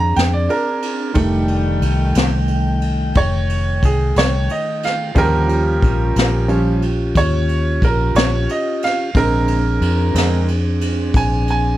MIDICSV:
0, 0, Header, 1, 5, 480
1, 0, Start_track
1, 0, Tempo, 665188
1, 842, Time_signature, 12, 3, 24, 8
1, 8497, End_track
2, 0, Start_track
2, 0, Title_t, "Upright piano"
2, 0, Program_c, 0, 0
2, 0, Note_on_c, 0, 82, 74
2, 107, Note_off_c, 0, 82, 0
2, 119, Note_on_c, 0, 79, 72
2, 231, Note_off_c, 0, 79, 0
2, 241, Note_on_c, 0, 74, 66
2, 352, Note_off_c, 0, 74, 0
2, 354, Note_on_c, 0, 62, 55
2, 362, Note_on_c, 0, 70, 71
2, 822, Note_on_c, 0, 55, 43
2, 823, Note_on_c, 0, 51, 46
2, 828, Note_off_c, 0, 70, 0
2, 828, Note_on_c, 0, 57, 55
2, 1292, Note_off_c, 0, 62, 0
2, 1526, Note_off_c, 0, 51, 0
2, 1526, Note_off_c, 0, 55, 0
2, 1528, Note_off_c, 0, 57, 0
2, 2287, Note_on_c, 0, 73, 75
2, 2753, Note_off_c, 0, 73, 0
2, 2779, Note_on_c, 0, 68, 69
2, 3006, Note_off_c, 0, 68, 0
2, 3015, Note_on_c, 0, 73, 80
2, 3244, Note_off_c, 0, 73, 0
2, 3256, Note_on_c, 0, 75, 66
2, 3484, Note_off_c, 0, 75, 0
2, 3498, Note_on_c, 0, 77, 72
2, 3715, Note_on_c, 0, 53, 54
2, 3716, Note_on_c, 0, 55, 47
2, 3722, Note_on_c, 0, 61, 56
2, 3725, Note_off_c, 0, 77, 0
2, 3735, Note_on_c, 0, 67, 73
2, 3738, Note_on_c, 0, 70, 93
2, 4662, Note_off_c, 0, 67, 0
2, 4664, Note_off_c, 0, 70, 0
2, 4667, Note_off_c, 0, 53, 0
2, 4668, Note_off_c, 0, 55, 0
2, 4670, Note_off_c, 0, 61, 0
2, 4678, Note_on_c, 0, 53, 43
2, 4678, Note_on_c, 0, 55, 35
2, 4681, Note_on_c, 0, 61, 47
2, 4898, Note_off_c, 0, 53, 0
2, 4898, Note_off_c, 0, 55, 0
2, 4900, Note_off_c, 0, 61, 0
2, 5176, Note_on_c, 0, 73, 76
2, 5637, Note_off_c, 0, 73, 0
2, 5660, Note_on_c, 0, 70, 69
2, 5886, Note_off_c, 0, 70, 0
2, 5891, Note_on_c, 0, 73, 80
2, 6121, Note_off_c, 0, 73, 0
2, 6139, Note_on_c, 0, 75, 69
2, 6365, Note_off_c, 0, 75, 0
2, 6379, Note_on_c, 0, 77, 80
2, 6597, Note_on_c, 0, 50, 52
2, 6601, Note_on_c, 0, 56, 42
2, 6604, Note_off_c, 0, 77, 0
2, 6607, Note_on_c, 0, 60, 54
2, 6616, Note_on_c, 0, 70, 90
2, 6919, Note_off_c, 0, 50, 0
2, 6921, Note_off_c, 0, 56, 0
2, 6925, Note_off_c, 0, 60, 0
2, 7318, Note_on_c, 0, 50, 44
2, 7323, Note_on_c, 0, 56, 40
2, 7324, Note_on_c, 0, 60, 49
2, 7536, Note_off_c, 0, 50, 0
2, 7539, Note_off_c, 0, 56, 0
2, 7539, Note_off_c, 0, 60, 0
2, 7540, Note_off_c, 0, 70, 0
2, 8056, Note_on_c, 0, 80, 75
2, 8282, Note_off_c, 0, 80, 0
2, 8302, Note_on_c, 0, 80, 73
2, 8497, Note_off_c, 0, 80, 0
2, 8497, End_track
3, 0, Start_track
3, 0, Title_t, "Tonewheel organ"
3, 0, Program_c, 1, 16
3, 0, Note_on_c, 1, 60, 59
3, 0, Note_on_c, 1, 62, 61
3, 0, Note_on_c, 1, 68, 61
3, 811, Note_off_c, 1, 68, 0
3, 814, Note_off_c, 1, 60, 0
3, 814, Note_off_c, 1, 62, 0
3, 831, Note_on_c, 1, 51, 60
3, 831, Note_on_c, 1, 57, 61
3, 839, Note_on_c, 1, 79, 60
3, 3693, Note_off_c, 1, 51, 0
3, 3693, Note_off_c, 1, 57, 0
3, 3697, Note_off_c, 1, 79, 0
3, 3717, Note_on_c, 1, 50, 55
3, 3723, Note_on_c, 1, 67, 58
3, 3724, Note_on_c, 1, 78, 54
3, 3950, Note_off_c, 1, 67, 0
3, 3953, Note_on_c, 1, 65, 70
3, 3958, Note_on_c, 1, 67, 69
3, 3959, Note_on_c, 1, 61, 64
3, 3962, Note_off_c, 1, 50, 0
3, 3965, Note_off_c, 1, 78, 0
3, 6571, Note_off_c, 1, 65, 0
3, 6574, Note_off_c, 1, 61, 0
3, 6574, Note_off_c, 1, 67, 0
3, 6599, Note_on_c, 1, 60, 69
3, 6602, Note_on_c, 1, 68, 71
3, 6603, Note_on_c, 1, 62, 74
3, 8497, Note_off_c, 1, 60, 0
3, 8497, Note_off_c, 1, 62, 0
3, 8497, Note_off_c, 1, 68, 0
3, 8497, End_track
4, 0, Start_track
4, 0, Title_t, "Fingered electric bass"
4, 0, Program_c, 2, 33
4, 0, Note_on_c, 2, 41, 95
4, 100, Note_off_c, 2, 41, 0
4, 121, Note_on_c, 2, 41, 82
4, 342, Note_off_c, 2, 41, 0
4, 837, Note_on_c, 2, 29, 99
4, 1292, Note_off_c, 2, 29, 0
4, 1313, Note_on_c, 2, 36, 87
4, 1539, Note_off_c, 2, 36, 0
4, 1560, Note_on_c, 2, 36, 104
4, 2255, Note_off_c, 2, 36, 0
4, 2278, Note_on_c, 2, 29, 97
4, 2734, Note_off_c, 2, 29, 0
4, 2762, Note_on_c, 2, 36, 99
4, 2985, Note_off_c, 2, 36, 0
4, 3004, Note_on_c, 2, 36, 100
4, 3226, Note_off_c, 2, 36, 0
4, 3723, Note_on_c, 2, 39, 105
4, 4176, Note_off_c, 2, 39, 0
4, 4204, Note_on_c, 2, 34, 101
4, 4426, Note_off_c, 2, 34, 0
4, 4446, Note_on_c, 2, 34, 99
4, 5137, Note_off_c, 2, 34, 0
4, 5162, Note_on_c, 2, 39, 101
4, 5615, Note_off_c, 2, 39, 0
4, 5643, Note_on_c, 2, 34, 104
4, 5865, Note_off_c, 2, 34, 0
4, 5879, Note_on_c, 2, 34, 97
4, 6103, Note_off_c, 2, 34, 0
4, 6605, Note_on_c, 2, 34, 97
4, 7055, Note_off_c, 2, 34, 0
4, 7079, Note_on_c, 2, 41, 100
4, 7302, Note_off_c, 2, 41, 0
4, 7320, Note_on_c, 2, 41, 105
4, 8012, Note_off_c, 2, 41, 0
4, 8042, Note_on_c, 2, 34, 98
4, 8493, Note_off_c, 2, 34, 0
4, 8497, End_track
5, 0, Start_track
5, 0, Title_t, "Drums"
5, 116, Note_on_c, 9, 51, 69
5, 135, Note_on_c, 9, 38, 116
5, 188, Note_off_c, 9, 51, 0
5, 207, Note_off_c, 9, 38, 0
5, 358, Note_on_c, 9, 51, 57
5, 430, Note_off_c, 9, 51, 0
5, 594, Note_on_c, 9, 51, 65
5, 666, Note_off_c, 9, 51, 0
5, 829, Note_on_c, 9, 51, 77
5, 834, Note_on_c, 9, 36, 99
5, 901, Note_off_c, 9, 51, 0
5, 906, Note_off_c, 9, 36, 0
5, 1067, Note_on_c, 9, 51, 54
5, 1139, Note_off_c, 9, 51, 0
5, 1311, Note_on_c, 9, 51, 66
5, 1383, Note_off_c, 9, 51, 0
5, 1550, Note_on_c, 9, 51, 81
5, 1570, Note_on_c, 9, 38, 109
5, 1623, Note_off_c, 9, 51, 0
5, 1642, Note_off_c, 9, 38, 0
5, 1788, Note_on_c, 9, 51, 59
5, 1860, Note_off_c, 9, 51, 0
5, 2031, Note_on_c, 9, 51, 58
5, 2103, Note_off_c, 9, 51, 0
5, 2273, Note_on_c, 9, 51, 78
5, 2278, Note_on_c, 9, 36, 112
5, 2345, Note_off_c, 9, 51, 0
5, 2350, Note_off_c, 9, 36, 0
5, 2522, Note_on_c, 9, 51, 58
5, 2594, Note_off_c, 9, 51, 0
5, 2762, Note_on_c, 9, 36, 82
5, 2764, Note_on_c, 9, 51, 64
5, 2834, Note_off_c, 9, 36, 0
5, 2836, Note_off_c, 9, 51, 0
5, 3001, Note_on_c, 9, 51, 83
5, 3020, Note_on_c, 9, 38, 113
5, 3073, Note_off_c, 9, 51, 0
5, 3093, Note_off_c, 9, 38, 0
5, 3242, Note_on_c, 9, 51, 65
5, 3315, Note_off_c, 9, 51, 0
5, 3485, Note_on_c, 9, 51, 65
5, 3505, Note_on_c, 9, 38, 34
5, 3557, Note_off_c, 9, 51, 0
5, 3577, Note_off_c, 9, 38, 0
5, 3718, Note_on_c, 9, 51, 79
5, 3722, Note_on_c, 9, 36, 102
5, 3790, Note_off_c, 9, 51, 0
5, 3794, Note_off_c, 9, 36, 0
5, 3962, Note_on_c, 9, 51, 63
5, 4034, Note_off_c, 9, 51, 0
5, 4203, Note_on_c, 9, 36, 87
5, 4207, Note_on_c, 9, 51, 58
5, 4275, Note_off_c, 9, 36, 0
5, 4280, Note_off_c, 9, 51, 0
5, 4444, Note_on_c, 9, 51, 84
5, 4464, Note_on_c, 9, 38, 103
5, 4517, Note_off_c, 9, 51, 0
5, 4536, Note_off_c, 9, 38, 0
5, 4680, Note_on_c, 9, 51, 59
5, 4753, Note_off_c, 9, 51, 0
5, 4921, Note_on_c, 9, 51, 56
5, 4993, Note_off_c, 9, 51, 0
5, 5162, Note_on_c, 9, 51, 83
5, 5163, Note_on_c, 9, 36, 107
5, 5234, Note_off_c, 9, 51, 0
5, 5235, Note_off_c, 9, 36, 0
5, 5404, Note_on_c, 9, 51, 55
5, 5476, Note_off_c, 9, 51, 0
5, 5643, Note_on_c, 9, 36, 81
5, 5647, Note_on_c, 9, 51, 58
5, 5715, Note_off_c, 9, 36, 0
5, 5719, Note_off_c, 9, 51, 0
5, 5883, Note_on_c, 9, 51, 86
5, 5902, Note_on_c, 9, 38, 103
5, 5955, Note_off_c, 9, 51, 0
5, 5974, Note_off_c, 9, 38, 0
5, 6127, Note_on_c, 9, 51, 71
5, 6199, Note_off_c, 9, 51, 0
5, 6367, Note_on_c, 9, 51, 67
5, 6387, Note_on_c, 9, 38, 32
5, 6439, Note_off_c, 9, 51, 0
5, 6459, Note_off_c, 9, 38, 0
5, 6602, Note_on_c, 9, 36, 108
5, 6602, Note_on_c, 9, 51, 79
5, 6674, Note_off_c, 9, 36, 0
5, 6674, Note_off_c, 9, 51, 0
5, 6839, Note_on_c, 9, 51, 72
5, 6911, Note_off_c, 9, 51, 0
5, 7083, Note_on_c, 9, 51, 69
5, 7155, Note_off_c, 9, 51, 0
5, 7326, Note_on_c, 9, 51, 91
5, 7346, Note_on_c, 9, 38, 103
5, 7398, Note_off_c, 9, 51, 0
5, 7418, Note_off_c, 9, 38, 0
5, 7564, Note_on_c, 9, 51, 61
5, 7636, Note_off_c, 9, 51, 0
5, 7801, Note_on_c, 9, 51, 64
5, 7874, Note_off_c, 9, 51, 0
5, 8040, Note_on_c, 9, 36, 119
5, 8041, Note_on_c, 9, 51, 82
5, 8112, Note_off_c, 9, 36, 0
5, 8113, Note_off_c, 9, 51, 0
5, 8282, Note_on_c, 9, 51, 60
5, 8354, Note_off_c, 9, 51, 0
5, 8497, End_track
0, 0, End_of_file